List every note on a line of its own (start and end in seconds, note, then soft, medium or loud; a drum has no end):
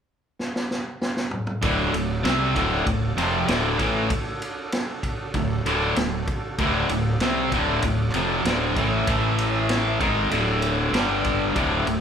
0.39 snare medium
0.56 snare medium
0.71 snare medium
1.01 snare medium
1.17 snare medium
1.31 mid tom medium
1.47 mid tom medium
1.62 1.91 D1 medium
1.62 1.92 D2 medium
1.62 1.92 A2 medium
1.62 1.93 D3 loud
1.62 4.09 F#4 medium
1.62 4.08 A4 medium
1.62 4.09 D5 medium
1.62 kick loud
1.62 ride loud
1.93 2.22 D1 medium
1.93 2.18 D2 medium
1.93 2.18 A2 medium
1.93 ride medium
2.23 2.53 C2 loud
2.23 2.54 C3 medium
2.23 2.54 G3 loud
2.23 2.55 C4 loud
2.23 snare loud
2.23 ride medium
2.55 2.84 D1 medium
2.55 2.85 D2 medium
2.55 2.85 A2 medium
2.55 2.86 D3 loud
2.55 kick medium
2.55 ride medium
2.86 3.15 D1 medium
2.86 3.11 D2 medium
2.86 3.11 A2 medium
2.86 kick loud
2.86 ride medium
3.17 3.46 F1 medium
3.17 3.47 F2 loud
3.17 3.48 C3 loud
3.17 3.48 F3 loud
3.17 ride medium
3.47 3.77 D1 medium
3.47 3.78 D2 medium
3.47 3.77 A2 medium
3.47 3.79 D3 loud
3.47 snare loud
3.47 ride medium
3.78 4.08 A1 medium
3.78 4.09 A2 medium
3.78 4.09 E3 medium
3.78 4.10 A3 loud
3.78 kick medium
3.78 ride medium
4.09 6.55 D4 medium
4.09 6.56 F#4 medium
4.09 6.56 A4 medium
4.09 kick loud
4.09 ride medium
4.42 ride medium
4.72 snare medium
4.72 ride medium
5.03 kick medium
5.03 ride medium
5.34 5.63 D1 medium
5.34 5.59 D2 medium
5.34 5.59 A2 medium
5.34 kick medium
5.34 ride medium
5.66 5.95 D1 medium
5.66 5.96 D2 loud
5.66 5.96 A2 loud
5.66 5.96 D3 loud
5.66 ride medium
5.96 6.25 D1 medium
5.96 6.22 D2 medium
5.96 6.22 A2 medium
5.96 snare loud
5.96 ride medium
6.27 kick medium
6.27 ride medium
6.57 6.88 D1 medium
6.57 6.89 D2 medium
6.57 6.89 A2 medium
6.57 6.90 D3 medium
6.57 6.79 G4 medium
6.57 6.79 A#4 medium
6.57 6.79 D#5 medium
6.57 kick loud
6.57 ride medium
6.77 9.04 F#4 medium
6.77 9.04 A4 medium
6.77 9.04 D5 medium
6.89 7.18 D1 medium
6.89 7.15 D2 medium
6.89 7.16 A2 medium
6.89 ride medium
7.20 7.50 C2 medium
7.20 7.51 C3 medium
7.20 7.52 G3 medium
7.20 7.52 C4 loud
7.20 snare loud
7.20 ride medium
7.52 7.81 D1 medium
7.52 7.83 D2 medium
7.52 7.83 A2 medium
7.52 7.83 D3 medium
7.52 kick medium
7.52 ride medium
7.82 8.12 D1 medium
7.82 8.08 D2 medium
7.82 8.09 A2 medium
7.82 kick medium
7.82 ride medium
8.14 8.43 F1 medium
8.14 8.44 F2 medium
8.14 8.45 C3 medium
8.14 8.45 F3 loud
8.14 ride medium
8.45 8.74 D1 medium
8.45 8.76 D2 medium
8.45 8.75 A2 medium
8.45 8.76 D3 medium
8.45 snare loud
8.45 ride medium
8.76 9.05 A1 medium
8.76 9.06 A2 medium
8.76 9.06 E3 medium
8.76 9.07 A3 medium
8.76 kick medium
8.76 ride medium
9.07 9.97 A1 medium
9.07 9.99 A2 medium
9.07 10.00 E3 medium
9.07 10.00 A3 loud
9.07 10.00 E4 medium
9.07 10.00 A4 medium
9.07 9.99 E5 medium
9.07 kick loud
9.07 ride loud
9.38 ride medium
9.69 snare loud
9.69 ride medium
10.00 10.29 G#1 medium
10.00 10.30 G#2 medium
10.00 10.31 D#3 medium
10.00 10.31 G#3 loud
10.00 10.93 F#4 medium
10.00 10.93 A4 medium
10.00 10.92 D5 medium
10.00 kick loud
10.00 ride medium
10.31 10.90 D1 medium
10.31 10.92 D2 medium
10.31 10.93 A2 medium
10.31 10.92 D3 medium
10.31 ride medium
10.62 ride medium
10.93 11.52 G1 medium
10.93 11.54 G2 medium
10.93 11.55 D3 medium
10.93 11.55 G3 loud
10.93 11.56 D4 medium
10.93 11.56 G4 medium
10.93 11.54 D5 medium
10.93 snare loud
10.93 ride medium
11.24 kick medium
11.24 ride medium
11.54 11.85 D1 medium
11.54 11.86 D2 medium
11.54 11.86 A2 medium
11.54 11.86 D3 medium
11.54 12.01 F#4 medium
11.54 12.01 A4 medium
11.54 12.01 D5 medium
11.54 kick loud
11.54 ride medium
11.86 12.01 D1 medium
11.86 12.01 D2 medium
11.86 12.01 A2 medium
11.86 ride medium